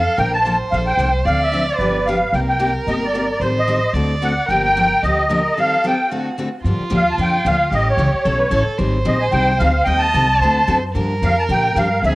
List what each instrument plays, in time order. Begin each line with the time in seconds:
Already playing: violin A4, accordion F5
0.17 upright bass A#1, steel-string acoustic guitar D3 F3 A#3 D4 A4, violin A#4, accordion G5
0.33 accordion A5
0.43 steel-string acoustic guitar D3 F3 A#3 D4 A4, violin C5
0.72 upright bass A#1, steel-string acoustic guitar D3 F3 A#3 D4 A4, accordion F5
0.87 accordion G5
0.97 upright bass C2, steel-string acoustic guitar D3 F3 A#3 D4 A4
1.25 upright bass D2, steel-string acoustic guitar D3 F3 C4 D4 A4, violin D5, accordion F5
1.42 accordion E5
1.52 steel-string acoustic guitar D3 F3 C4 D4 A4
1.68 accordion D5
1.78 upright bass G1, steel-string acoustic guitar D3 F3 B3 D4 G4, violin B4
2.06 steel-string acoustic guitar D3 F3 B3 D4 G4, accordion F5
2.33 upright bass C2, steel-string acoustic guitar C3 G3 A#3 D#4 G4, violin A#4, accordion G5
2.49 accordion G5
2.59 steel-string acoustic guitar C3 G3 A#3 D#4 G4
2.87 upright bass G1, steel-string acoustic guitar C3 G3 A#3 D#4 G4, accordion D#5
3.04 accordion D5
3.14 steel-string acoustic guitar C3 G3 A#3 D#4 G4
3.31 accordion D5
3.40 upright bass A1, steel-string acoustic guitar D#3 G3 C4 G4 A4, violin C5, accordion C5
3.59 accordion D#5
3.68 steel-string acoustic guitar D#3 G3 C4 G4 A4
3.93 upright bass D2, steel-string acoustic guitar D3 A3 C4 F#4 A4, violin D5
4.22 steel-string acoustic guitar D3 A3 C4 F#4 A4, accordion F#5
4.48 upright bass G1, steel-string acoustic guitar D3 F3 A#3 D4 G4, violin A#4, accordion G5
4.64 accordion G5
4.77 steel-string acoustic guitar D3 F3 A#3 D4 G4
5.03 upright bass D2, steel-string acoustic guitar D3 F3 A#3 D4 G4, violin G4, accordion D#5
5.29 steel-string acoustic guitar D3 F3 A#3 D4 G4, violin A#4
5.55 steel-string acoustic guitar D#3 G3 C4 G4, violin A4
5.59 steel-string acoustic guitar A4, accordion F5
5.84 steel-string acoustic guitar D#3 G3 C4 G4 A4, accordion G5
6.09 steel-string acoustic guitar D3 A3 C4 F#4 A4, violin F#4
6.38 steel-string acoustic guitar D3 A3 C4 F#4 A4
6.63 upright bass G2, steel-string acoustic guitar D3 F3 A#3 G4, violin F4
6.67 steel-string acoustic guitar D4
6.79 muted upright bass stroke
6.90 upright bass D#2, steel-string acoustic guitar D3 F3 A#3 D4 G4
6.96 accordion F5
7.11 accordion A5
7.18 upright bass F2, steel-string acoustic guitar D3 F3 A#3 D4 G4, accordion G5
7.45 upright bass D2, steel-string acoustic guitar D3 F3 A#3 D4 G4, accordion F5
7.69 upright bass A1, steel-string acoustic guitar E3 G3 C#4 E4 A4, violin G4
7.74 accordion D#5
7.90 accordion C#5
7.97 upright bass C#2, steel-string acoustic guitar E3 G3 C#4 E4 A4
8.13 muted upright bass stroke
8.25 upright bass B1, steel-string acoustic guitar E3 G3 C#4 E4 A4, violin A4
8.39 violin B4
8.51 upright bass A1, steel-string acoustic guitar E3 G3 C#4 E4 A4, violin A4
8.67 muted upright bass stroke
8.78 upright bass G#1, steel-string acoustic guitar D#3 G3 C4 D#4 G#4, violin C5
9.05 upright bass A#1, steel-string acoustic guitar D#3 G3 C4 D#4 G#4, accordion D#5
9.20 accordion G#5
9.31 upright bass C2, steel-string acoustic guitar D#3 G3 C4 D#4 G#4, accordion G5
9.58 upright bass D2, steel-string acoustic guitar D#3 G3 C4 D#4 G#4, accordion F5
9.84 upright bass D#2, steel-string acoustic guitar D#3 G3 C4 G4 A4, violin D#5, accordion G5
9.99 accordion A5
10.14 upright bass C2, steel-string acoustic guitar D#3 G3 C4 G4 A4
10.40 upright bass D2, steel-string acoustic guitar D3 A3 C4 F#4 A4, violin C5
10.67 upright bass F#2, steel-string acoustic guitar D3 A3 C4 F#4 A4
10.94 upright bass G2, steel-string acoustic guitar D3 F3 A#3 D4 G4, violin A#4
11.22 upright bass F2, steel-string acoustic guitar D3 F3 A#3 D4 G4, accordion F5
11.39 accordion A5
11.49 upright bass A#2, steel-string acoustic guitar D3 F3 A#3 D4 G4, accordion G5
11.75 upright bass G2, steel-string acoustic guitar D3 F3 A#3 D4 G4, accordion F5
12.03 upright bass D2, steel-string acoustic guitar D3 F3 C4 D4 G#4, violin G#4, accordion E5